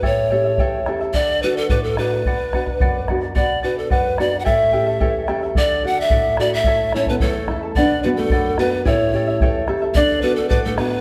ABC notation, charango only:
X:1
M:2/4
L:1/16
Q:1/4=109
K:Bm
V:1 name="Charango"
[EAceg]2 [EAeg] [EAe] [EAceg]2 [EAeg] [EAe] | [Adf]2 [Adf] [df] [Adf]2 [Adf] [df] | [Bdf]2 [Bdf] [df] [Bdf]2 [Bdf] [df] | [Bdf]2 [Bdf] [df] [Bdf]2 [Bdf] [df] |
[EAceg]2 [EAeg] [EAe] [EAceg]2 [EAeg] [EAe] | [Adf]2 [Adf] [df] [Adf]2 [Adf] [df] | [EAcea]2 [EAea] [EAa] [EAcea]2 [EAea] [EAa] | [Bdf]2 [Bdf] [df] [Bdf]2 [Bdf] [df] |
[EAceg]2 [EAeg] [EAe] [EAceg]2 [EAeg] [EAe] | [Adf]2 [Adf] [df] [Adf]2 [Adf] [df] |]